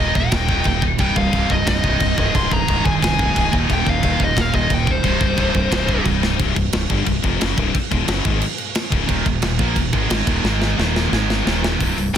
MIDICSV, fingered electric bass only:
0, 0, Header, 1, 3, 480
1, 0, Start_track
1, 0, Key_signature, -3, "minor"
1, 0, Tempo, 337648
1, 1422, Time_signature, 4, 2, 24, 8
1, 17314, End_track
2, 0, Start_track
2, 0, Title_t, "Fingered electric bass"
2, 0, Program_c, 0, 33
2, 0, Note_on_c, 0, 27, 97
2, 183, Note_off_c, 0, 27, 0
2, 218, Note_on_c, 0, 27, 85
2, 422, Note_off_c, 0, 27, 0
2, 459, Note_on_c, 0, 27, 94
2, 863, Note_off_c, 0, 27, 0
2, 931, Note_on_c, 0, 27, 92
2, 1337, Note_off_c, 0, 27, 0
2, 1404, Note_on_c, 0, 24, 92
2, 1612, Note_off_c, 0, 24, 0
2, 1655, Note_on_c, 0, 24, 98
2, 1858, Note_off_c, 0, 24, 0
2, 1894, Note_on_c, 0, 24, 93
2, 2098, Note_off_c, 0, 24, 0
2, 2130, Note_on_c, 0, 24, 96
2, 2335, Note_off_c, 0, 24, 0
2, 2371, Note_on_c, 0, 24, 91
2, 2575, Note_off_c, 0, 24, 0
2, 2618, Note_on_c, 0, 24, 85
2, 2819, Note_off_c, 0, 24, 0
2, 2856, Note_on_c, 0, 24, 89
2, 3058, Note_off_c, 0, 24, 0
2, 3097, Note_on_c, 0, 24, 100
2, 3298, Note_off_c, 0, 24, 0
2, 3335, Note_on_c, 0, 24, 96
2, 3537, Note_off_c, 0, 24, 0
2, 3576, Note_on_c, 0, 24, 100
2, 3777, Note_off_c, 0, 24, 0
2, 3815, Note_on_c, 0, 24, 104
2, 4016, Note_off_c, 0, 24, 0
2, 4053, Note_on_c, 0, 24, 96
2, 4255, Note_off_c, 0, 24, 0
2, 4303, Note_on_c, 0, 24, 96
2, 4701, Note_off_c, 0, 24, 0
2, 4778, Note_on_c, 0, 24, 98
2, 4978, Note_off_c, 0, 24, 0
2, 5018, Note_on_c, 0, 27, 101
2, 5217, Note_off_c, 0, 27, 0
2, 5255, Note_on_c, 0, 27, 102
2, 5456, Note_off_c, 0, 27, 0
2, 5499, Note_on_c, 0, 27, 99
2, 5697, Note_off_c, 0, 27, 0
2, 5734, Note_on_c, 0, 27, 107
2, 5935, Note_off_c, 0, 27, 0
2, 5967, Note_on_c, 0, 27, 98
2, 6170, Note_off_c, 0, 27, 0
2, 6214, Note_on_c, 0, 27, 95
2, 6414, Note_off_c, 0, 27, 0
2, 6450, Note_on_c, 0, 27, 104
2, 6652, Note_off_c, 0, 27, 0
2, 6691, Note_on_c, 0, 27, 102
2, 7094, Note_off_c, 0, 27, 0
2, 7167, Note_on_c, 0, 24, 102
2, 7370, Note_off_c, 0, 24, 0
2, 7400, Note_on_c, 0, 24, 98
2, 7606, Note_off_c, 0, 24, 0
2, 7646, Note_on_c, 0, 24, 94
2, 7850, Note_off_c, 0, 24, 0
2, 7884, Note_on_c, 0, 24, 100
2, 8088, Note_off_c, 0, 24, 0
2, 8130, Note_on_c, 0, 24, 88
2, 8533, Note_off_c, 0, 24, 0
2, 8613, Note_on_c, 0, 24, 91
2, 9015, Note_off_c, 0, 24, 0
2, 9098, Note_on_c, 0, 24, 85
2, 9318, Note_off_c, 0, 24, 0
2, 9331, Note_on_c, 0, 24, 82
2, 9555, Note_off_c, 0, 24, 0
2, 9571, Note_on_c, 0, 24, 85
2, 9795, Note_off_c, 0, 24, 0
2, 9810, Note_on_c, 0, 31, 105
2, 10034, Note_off_c, 0, 31, 0
2, 10048, Note_on_c, 0, 24, 79
2, 10273, Note_off_c, 0, 24, 0
2, 10292, Note_on_c, 0, 29, 95
2, 10515, Note_off_c, 0, 29, 0
2, 10550, Note_on_c, 0, 30, 86
2, 10765, Note_off_c, 0, 30, 0
2, 10776, Note_on_c, 0, 24, 100
2, 10998, Note_off_c, 0, 24, 0
2, 11253, Note_on_c, 0, 27, 103
2, 11472, Note_off_c, 0, 27, 0
2, 11480, Note_on_c, 0, 30, 101
2, 11710, Note_off_c, 0, 30, 0
2, 11729, Note_on_c, 0, 32, 96
2, 11955, Note_off_c, 0, 32, 0
2, 12681, Note_on_c, 0, 25, 95
2, 12911, Note_off_c, 0, 25, 0
2, 12922, Note_on_c, 0, 27, 92
2, 13149, Note_off_c, 0, 27, 0
2, 13158, Note_on_c, 0, 27, 95
2, 13390, Note_off_c, 0, 27, 0
2, 13401, Note_on_c, 0, 27, 87
2, 13632, Note_off_c, 0, 27, 0
2, 13645, Note_on_c, 0, 34, 107
2, 13869, Note_off_c, 0, 34, 0
2, 13877, Note_on_c, 0, 27, 82
2, 14110, Note_off_c, 0, 27, 0
2, 14119, Note_on_c, 0, 32, 101
2, 14351, Note_off_c, 0, 32, 0
2, 14367, Note_on_c, 0, 32, 92
2, 14588, Note_off_c, 0, 32, 0
2, 14597, Note_on_c, 0, 27, 97
2, 14831, Note_off_c, 0, 27, 0
2, 14839, Note_on_c, 0, 32, 88
2, 15296, Note_off_c, 0, 32, 0
2, 15335, Note_on_c, 0, 27, 104
2, 15785, Note_off_c, 0, 27, 0
2, 15813, Note_on_c, 0, 32, 97
2, 16265, Note_off_c, 0, 32, 0
2, 16295, Note_on_c, 0, 27, 92
2, 16748, Note_off_c, 0, 27, 0
2, 16786, Note_on_c, 0, 24, 83
2, 17010, Note_off_c, 0, 24, 0
2, 17017, Note_on_c, 0, 24, 77
2, 17240, Note_off_c, 0, 24, 0
2, 17249, Note_on_c, 0, 24, 73
2, 17314, Note_off_c, 0, 24, 0
2, 17314, End_track
3, 0, Start_track
3, 0, Title_t, "Muted fingered electric bass strokes"
3, 11017, Note_on_c, 9, 29, 39
3, 11159, Note_off_c, 9, 29, 0
3, 17314, End_track
0, 0, End_of_file